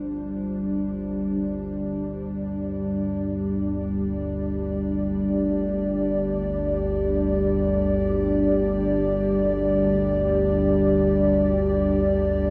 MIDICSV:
0, 0, Header, 1, 3, 480
1, 0, Start_track
1, 0, Tempo, 500000
1, 12002, End_track
2, 0, Start_track
2, 0, Title_t, "Analog synth pad"
2, 0, Program_c, 0, 89
2, 0, Note_on_c, 0, 55, 57
2, 0, Note_on_c, 0, 62, 81
2, 0, Note_on_c, 0, 65, 84
2, 0, Note_on_c, 0, 67, 72
2, 0, Note_on_c, 0, 72, 80
2, 0, Note_on_c, 0, 74, 78
2, 1799, Note_off_c, 0, 65, 0
2, 2809, Note_off_c, 0, 72, 0
2, 12002, Note_off_c, 0, 55, 0
2, 12002, Note_off_c, 0, 62, 0
2, 12002, Note_off_c, 0, 67, 0
2, 12002, Note_off_c, 0, 74, 0
2, 12002, End_track
3, 0, Start_track
3, 0, Title_t, "Synth drone"
3, 0, Program_c, 1, 95
3, 0, Note_on_c, 1, 31, 72
3, 0, Note_on_c, 1, 38, 74
3, 12002, Note_off_c, 1, 31, 0
3, 12002, Note_off_c, 1, 38, 0
3, 12002, End_track
0, 0, End_of_file